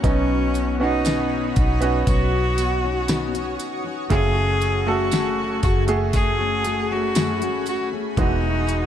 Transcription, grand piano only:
0, 0, Header, 1, 2, 480
1, 0, Start_track
1, 0, Key_signature, 5, "major"
1, 0, Tempo, 1016949
1, 18, Time_signature, 4, 2, 24, 8
1, 4182, End_track
2, 0, Start_track
2, 0, Title_t, "Grand piano"
2, 0, Program_c, 0, 0
2, 0, Control_c, 0, 64, 127
2, 16, Note_on_c, 0, 59, 64
2, 17, Note_on_c, 0, 47, 59
2, 18, Note_on_c, 0, 54, 62
2, 19, Note_on_c, 0, 61, 61
2, 21, Note_on_c, 0, 63, 75
2, 23, Control_c, 0, 64, 0
2, 105, Control_c, 0, 64, 127
2, 359, Note_off_c, 0, 59, 0
2, 361, Note_off_c, 0, 61, 0
2, 361, Note_off_c, 0, 63, 0
2, 376, Note_on_c, 0, 59, 64
2, 380, Note_on_c, 0, 61, 60
2, 382, Note_on_c, 0, 66, 71
2, 719, Note_off_c, 0, 47, 0
2, 719, Note_off_c, 0, 54, 0
2, 833, Note_off_c, 0, 59, 0
2, 835, Note_off_c, 0, 61, 0
2, 836, Note_off_c, 0, 66, 0
2, 852, Note_on_c, 0, 59, 69
2, 856, Note_on_c, 0, 61, 56
2, 861, Note_on_c, 0, 66, 79
2, 1767, Note_off_c, 0, 59, 0
2, 1769, Note_off_c, 0, 61, 0
2, 1771, Note_off_c, 0, 66, 0
2, 1933, Note_on_c, 0, 57, 72
2, 1937, Note_on_c, 0, 49, 61
2, 1937, Note_on_c, 0, 66, 61
2, 1940, Note_on_c, 0, 68, 82
2, 1945, Control_c, 0, 64, 0
2, 2036, Control_c, 0, 64, 127
2, 2278, Note_off_c, 0, 57, 0
2, 2280, Note_off_c, 0, 66, 0
2, 2281, Note_off_c, 0, 68, 0
2, 2297, Note_on_c, 0, 57, 67
2, 2301, Note_on_c, 0, 66, 59
2, 2305, Note_on_c, 0, 69, 70
2, 2639, Note_off_c, 0, 49, 0
2, 2753, Note_off_c, 0, 57, 0
2, 2756, Note_off_c, 0, 66, 0
2, 2757, Note_off_c, 0, 69, 0
2, 2773, Note_on_c, 0, 57, 71
2, 2777, Note_on_c, 0, 66, 62
2, 2779, Note_on_c, 0, 68, 80
2, 3688, Note_off_c, 0, 57, 0
2, 3690, Note_off_c, 0, 66, 0
2, 3690, Note_off_c, 0, 68, 0
2, 3859, Note_on_c, 0, 56, 63
2, 3860, Note_on_c, 0, 52, 60
2, 3862, Note_on_c, 0, 47, 61
2, 3864, Control_c, 0, 64, 0
2, 3865, Note_on_c, 0, 66, 79
2, 3935, Control_c, 0, 64, 127
2, 4182, Note_off_c, 0, 47, 0
2, 4182, Note_off_c, 0, 52, 0
2, 4182, Note_off_c, 0, 56, 0
2, 4182, Note_off_c, 0, 66, 0
2, 4182, End_track
0, 0, End_of_file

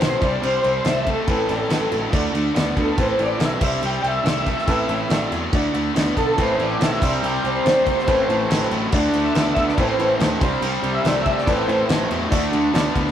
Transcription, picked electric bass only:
0, 0, Header, 1, 2, 480
1, 0, Start_track
1, 0, Tempo, 424628
1, 1442, Time_signature, 4, 2, 24, 8
1, 14824, End_track
2, 0, Start_track
2, 0, Title_t, "Picked electric bass"
2, 0, Program_c, 0, 34
2, 6, Note_on_c, 0, 35, 84
2, 165, Note_off_c, 0, 35, 0
2, 248, Note_on_c, 0, 36, 81
2, 407, Note_off_c, 0, 36, 0
2, 489, Note_on_c, 0, 36, 97
2, 648, Note_off_c, 0, 36, 0
2, 731, Note_on_c, 0, 36, 82
2, 889, Note_off_c, 0, 36, 0
2, 967, Note_on_c, 0, 36, 86
2, 1288, Note_off_c, 0, 36, 0
2, 1444, Note_on_c, 0, 33, 97
2, 1605, Note_off_c, 0, 33, 0
2, 1690, Note_on_c, 0, 33, 92
2, 1849, Note_off_c, 0, 33, 0
2, 1927, Note_on_c, 0, 33, 86
2, 2087, Note_off_c, 0, 33, 0
2, 2174, Note_on_c, 0, 33, 85
2, 2332, Note_off_c, 0, 33, 0
2, 2406, Note_on_c, 0, 38, 98
2, 2567, Note_off_c, 0, 38, 0
2, 2648, Note_on_c, 0, 38, 87
2, 2808, Note_off_c, 0, 38, 0
2, 2894, Note_on_c, 0, 38, 94
2, 3053, Note_off_c, 0, 38, 0
2, 3128, Note_on_c, 0, 38, 88
2, 3289, Note_off_c, 0, 38, 0
2, 3369, Note_on_c, 0, 33, 95
2, 3530, Note_off_c, 0, 33, 0
2, 3605, Note_on_c, 0, 33, 88
2, 3767, Note_off_c, 0, 33, 0
2, 3842, Note_on_c, 0, 35, 88
2, 4005, Note_off_c, 0, 35, 0
2, 4086, Note_on_c, 0, 36, 89
2, 4248, Note_off_c, 0, 36, 0
2, 4326, Note_on_c, 0, 36, 93
2, 4488, Note_off_c, 0, 36, 0
2, 4562, Note_on_c, 0, 36, 90
2, 4726, Note_off_c, 0, 36, 0
2, 4797, Note_on_c, 0, 36, 88
2, 5124, Note_off_c, 0, 36, 0
2, 5287, Note_on_c, 0, 33, 97
2, 5449, Note_off_c, 0, 33, 0
2, 5528, Note_on_c, 0, 33, 97
2, 5690, Note_off_c, 0, 33, 0
2, 5766, Note_on_c, 0, 33, 89
2, 5929, Note_off_c, 0, 33, 0
2, 6005, Note_on_c, 0, 40, 84
2, 6168, Note_off_c, 0, 40, 0
2, 6253, Note_on_c, 0, 38, 96
2, 6414, Note_off_c, 0, 38, 0
2, 6487, Note_on_c, 0, 38, 87
2, 6650, Note_off_c, 0, 38, 0
2, 6727, Note_on_c, 0, 38, 86
2, 6890, Note_off_c, 0, 38, 0
2, 6974, Note_on_c, 0, 35, 82
2, 7135, Note_off_c, 0, 35, 0
2, 7216, Note_on_c, 0, 33, 88
2, 7376, Note_off_c, 0, 33, 0
2, 7448, Note_on_c, 0, 33, 98
2, 7611, Note_off_c, 0, 33, 0
2, 7689, Note_on_c, 0, 35, 87
2, 7851, Note_off_c, 0, 35, 0
2, 7934, Note_on_c, 0, 36, 91
2, 8095, Note_off_c, 0, 36, 0
2, 8173, Note_on_c, 0, 36, 99
2, 8334, Note_off_c, 0, 36, 0
2, 8414, Note_on_c, 0, 36, 88
2, 8575, Note_off_c, 0, 36, 0
2, 8655, Note_on_c, 0, 36, 87
2, 8977, Note_off_c, 0, 36, 0
2, 9137, Note_on_c, 0, 33, 96
2, 9297, Note_off_c, 0, 33, 0
2, 9369, Note_on_c, 0, 33, 97
2, 9531, Note_off_c, 0, 33, 0
2, 9608, Note_on_c, 0, 33, 82
2, 9770, Note_off_c, 0, 33, 0
2, 9849, Note_on_c, 0, 33, 90
2, 10011, Note_off_c, 0, 33, 0
2, 10092, Note_on_c, 0, 38, 97
2, 10253, Note_off_c, 0, 38, 0
2, 10330, Note_on_c, 0, 38, 90
2, 10491, Note_off_c, 0, 38, 0
2, 10572, Note_on_c, 0, 38, 92
2, 10732, Note_off_c, 0, 38, 0
2, 10814, Note_on_c, 0, 38, 86
2, 10973, Note_off_c, 0, 38, 0
2, 11054, Note_on_c, 0, 33, 94
2, 11213, Note_off_c, 0, 33, 0
2, 11289, Note_on_c, 0, 33, 90
2, 11450, Note_off_c, 0, 33, 0
2, 11527, Note_on_c, 0, 38, 93
2, 11688, Note_off_c, 0, 38, 0
2, 11770, Note_on_c, 0, 36, 87
2, 11930, Note_off_c, 0, 36, 0
2, 12002, Note_on_c, 0, 36, 96
2, 12164, Note_off_c, 0, 36, 0
2, 12242, Note_on_c, 0, 36, 92
2, 12404, Note_off_c, 0, 36, 0
2, 12484, Note_on_c, 0, 36, 90
2, 12806, Note_off_c, 0, 36, 0
2, 12968, Note_on_c, 0, 33, 97
2, 13127, Note_off_c, 0, 33, 0
2, 13205, Note_on_c, 0, 33, 101
2, 13365, Note_off_c, 0, 33, 0
2, 13439, Note_on_c, 0, 33, 88
2, 13601, Note_off_c, 0, 33, 0
2, 13682, Note_on_c, 0, 40, 94
2, 13843, Note_off_c, 0, 40, 0
2, 13927, Note_on_c, 0, 38, 96
2, 14086, Note_off_c, 0, 38, 0
2, 14160, Note_on_c, 0, 38, 89
2, 14321, Note_off_c, 0, 38, 0
2, 14395, Note_on_c, 0, 38, 89
2, 14558, Note_off_c, 0, 38, 0
2, 14645, Note_on_c, 0, 38, 89
2, 14805, Note_off_c, 0, 38, 0
2, 14824, End_track
0, 0, End_of_file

